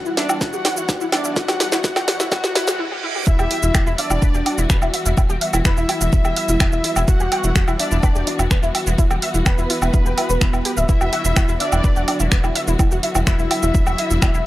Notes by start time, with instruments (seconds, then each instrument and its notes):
Already playing: string section E3 G3 B3 F#4
0.05 synth arpeggio sound E4, shaker
0.17 analog polysynth D4, violin section D5, synth arpeggio sound E5, snare, open hi-hat
0.29 synth arpeggio sound E4, low woodblock, shaker
0.41 synth arpeggio sound E4, analog polysynth F#4, violin section F#5, kick, snare, shaker
0.53 synth arpeggio sound G4, shaker
0.65 synth arpeggio sound G4, snare, open hi-hat, low woodblock
0.77 synth arpeggio sound E4, shaker
0.89 synth arpeggio sound G4, kick, snare, shaker
1.01 synth arpeggio sound E4, shaker
1.12 analog polysynth D4, violin section D5, synth arpeggio sound E5, snare, open hi-hat, low woodblock
1.24 synth arpeggio sound E4, shaker
1.36 synth arpeggio sound E4, analog polysynth F#4, violin section F#5, kick, snare, shaker
1.48 synth arpeggio sound G4, snare, low woodblock, shaker
1.60 synth arpeggio sound G4, snare, open hi-hat
1.72 synth arpeggio sound E4, snare, shaker
1.84 synth arpeggio sound E4, analog polysynth F#4, violin section F#5, kick, snare, shaker
1.96 synth arpeggio sound G4, snare, low woodblock, shaker
2.08 synth arpeggio sound G4, snare, open hi-hat
2.20 synth arpeggio sound E4, snare, shaker
2.31 synth arpeggio sound E4, analog polysynth F#4, violin section F#5, kick, snare, reverse cymbal, low woodblock, shaker
2.44 synth arpeggio sound G4, snare, shaker
2.55 synth arpeggio sound E4, analog polysynth F#4, violin section F#5, snare, open hi-hat
2.67 synth arpeggio sound G4, snare, shaker
2.79 synth arpeggio sound E4
2.91 synth arpeggio sound G4
3.03 synth arpeggio sound E4
3.15 synth arpeggio sound G4
3.27 analog synth bass E1, string section E3 G3 B3 F#4, synth arpeggio sound E4 E5, analog polysynth E4, violin section E5, kick, shaker
3.39 analog synth bass E1, synth arpeggio sound G4 G5, low woodblock, shaker
3.51 synth arpeggio sound G4 G5, open hi-hat
3.63 analog synth bass E1, synth arpeggio sound E4 E5, shaker
3.74 analog synth bass E1, synth arpeggio sound G4 G5, finger snap, kick, low woodblock, shaker
3.87 analog synth bass E1, synth arpeggio sound E4 E5, shaker
3.98 analog polysynth D4, violin section D5, synth arpeggio sound E5 E6, open hi-hat
4.10 analog synth bass E1, synth arpeggio sound E4 E5, low woodblock, shaker
4.22 analog synth bass E1, synth arpeggio sound B4 B5, kick, shaker
4.34 analog synth bass E1, synth arpeggio sound G4 G5, shaker
4.46 synth arpeggio sound D4 D5, open hi-hat, low woodblock
4.58 analog synth bass E1, synth arpeggio sound E4 E5, shaker
4.70 analog synth bass E1, synth arpeggio sound B4 B5, finger snap, kick, shaker
4.82 analog synth bass E1, synth arpeggio sound E4 E5, low woodblock, shaker
4.94 synth arpeggio sound E5 E6, open hi-hat
5.06 analog synth bass E1, synth arpeggio sound E4 E5, shaker
5.17 analog synth bass E1, synth arpeggio sound E4 E5, kick, low woodblock, shaker
5.29 analog synth bass E1, synth arpeggio sound G4 G5, shaker
5.41 synth arpeggio sound E5 E6, open hi-hat
5.53 analog synth bass E1, synth arpeggio sound E4 E5, low woodblock, shaker
5.65 analog synth bass E1, analog polysynth E4, synth arpeggio sound B4 B5, violin section E5, finger snap, kick, shaker
5.77 analog synth bass E1, synth arpeggio sound E4 E5, shaker
5.89 synth arpeggio sound E4 E5, open hi-hat, low woodblock
6.01 analog synth bass E1, synth arpeggio sound E4 E5, shaker
6.13 analog synth bass E1, synth arpeggio sound E4 E5, kick, shaker
6.25 analog synth bass E1, synth arpeggio sound G4 G5, low woodblock, shaker
6.36 synth arpeggio sound E5 E6, open hi-hat
6.48 analog synth bass E1, synth arpeggio sound E4 E5, shaker
6.60 analog synth bass E1, synth arpeggio sound D4 D5, finger snap, kick, low woodblock, shaker
6.72 analog synth bass E1, synth arpeggio sound E4 E5, shaker
6.84 synth arpeggio sound E4 E5, open hi-hat
6.96 analog synth bass E1, synth arpeggio sound E4 E5, low woodblock, shaker
7.08 analog synth bass E1, synth arpeggio sound E4 E5, analog polysynth F#4, string section F#4, violin section F#5, kick, shaker
7.20 analog synth bass E1, synth arpeggio sound G4 G5, shaker
7.32 synth arpeggio sound G4 G5, open hi-hat, low woodblock
7.44 analog synth bass E1, synth arpeggio sound E4 E5, shaker
7.55 analog synth bass E1, synth arpeggio sound G4 G5, finger snap, kick, shaker
7.68 analog synth bass E1, synth arpeggio sound E4 E5, low woodblock, shaker
7.79 analog polysynth D4, violin section D5, synth arpeggio sound E5 E6, open hi-hat
7.91 analog synth bass E1, synth arpeggio sound E4 E5, shaker
8.03 analog synth bass E1, synth arpeggio sound B4 B5, kick, low woodblock, shaker
8.15 analog synth bass E1, synth arpeggio sound G4 G5, shaker
8.27 synth arpeggio sound D4 D5, open hi-hat
8.39 analog synth bass E1, synth arpeggio sound E4 E5, low woodblock, shaker
8.51 analog synth bass E1, synth arpeggio sound B4 B5, finger snap, kick, shaker
8.63 analog synth bass E1, synth arpeggio sound E4 E5, shaker
8.75 synth arpeggio sound E5 E6, open hi-hat, low woodblock
8.87 analog synth bass E1, synth arpeggio sound E4 E5, shaker
8.98 analog synth bass E1, synth arpeggio sound E4 E5, kick, shaker
9.10 analog synth bass E1, synth arpeggio sound G4 G5, low woodblock, shaker
9.22 synth arpeggio sound E5 E6, open hi-hat
9.34 analog synth bass E1, synth arpeggio sound E4 E5, shaker
9.46 analog synth bass E1, analog polysynth B3, violin section B4, synth arpeggio sound B4 B5, finger snap, kick, low woodblock, shaker
9.58 analog synth bass E1, synth arpeggio sound E4 E5, shaker
9.70 synth arpeggio sound E4 E5, open hi-hat
9.82 analog synth bass E1, synth arpeggio sound E4 E5, low woodblock, shaker
9.94 analog synth bass E1, synth arpeggio sound E4 E5, kick, shaker
10.06 analog synth bass E1, synth arpeggio sound G4 G5, shaker
10.17 synth arpeggio sound E4 E5, open hi-hat, low woodblock
10.30 analog synth bass E1, synth arpeggio sound B4 B5, shaker
10.41 analog synth bass E1, synth arpeggio sound E4 E5, finger snap, kick, shaker
10.53 analog synth bass E1, synth arpeggio sound E4 E5, low woodblock, shaker
10.65 synth arpeggio sound G4 G5, open hi-hat
10.77 analog synth bass D1, synth arpeggio sound E5 E6, shaker
10.89 analog synth bass E1, string section D3 F#3 F#4, synth arpeggio sound E4 E5, analog polysynth E4, violin section E5, kick, shaker
11.01 analog synth bass E1, synth arpeggio sound F#4 F#5, low woodblock, shaker
11.13 synth arpeggio sound F#4 F#5, open hi-hat
11.25 analog synth bass E1, synth arpeggio sound E4 E5, shaker
11.36 analog synth bass E1, synth arpeggio sound F#4 F#5, finger snap, kick, low woodblock, shaker
11.48 analog synth bass E1, synth arpeggio sound E4 E5, shaker
11.60 analog polysynth D4, violin section D5, synth arpeggio sound E5 E6, open hi-hat
11.72 analog synth bass E1, synth arpeggio sound E4 E5, low woodblock, shaker
11.84 analog synth bass E1, synth arpeggio sound B4 B5, kick, shaker
11.96 analog synth bass E1, synth arpeggio sound F#4 F#5, shaker
12.08 synth arpeggio sound D4 D5, open hi-hat, low woodblock
12.20 analog synth bass E1, synth arpeggio sound E4 E5, shaker
12.32 analog synth bass E1, synth arpeggio sound B4 B5, finger snap, kick, shaker
12.44 analog synth bass E1, synth arpeggio sound E4 E5, low woodblock, shaker
12.55 synth arpeggio sound E5 E6, open hi-hat
12.68 analog synth bass E1, synth arpeggio sound E4 E5, shaker
12.79 analog synth bass E1, synth arpeggio sound E4 E5, kick, low woodblock, shaker
12.91 analog synth bass E1, synth arpeggio sound F#4 F#5, shaker
13.03 synth arpeggio sound E5 E6, open hi-hat
13.15 analog synth bass E1, synth arpeggio sound E4 E5, low woodblock, shaker
13.27 analog synth bass E1, analog polysynth E4, synth arpeggio sound B4 B5, violin section E5, finger snap, kick, shaker
13.39 analog synth bass E1, synth arpeggio sound E4 E5, shaker
13.51 synth arpeggio sound E4 E5, open hi-hat, low woodblock
13.63 analog synth bass E1, synth arpeggio sound E4 E5, shaker
13.74 analog synth bass E1, synth arpeggio sound E4 E5, kick, shaker
13.86 analog synth bass E1, synth arpeggio sound F#4 F#5, low woodblock, shaker
13.98 synth arpeggio sound E5 E6, open hi-hat
14.10 analog synth bass E1, synth arpeggio sound E4 E5, shaker
14.22 analog synth bass E1, synth arpeggio sound D4 D5, finger snap, kick, low woodblock, shaker
14.34 analog synth bass E1, synth arpeggio sound E4 E5, shaker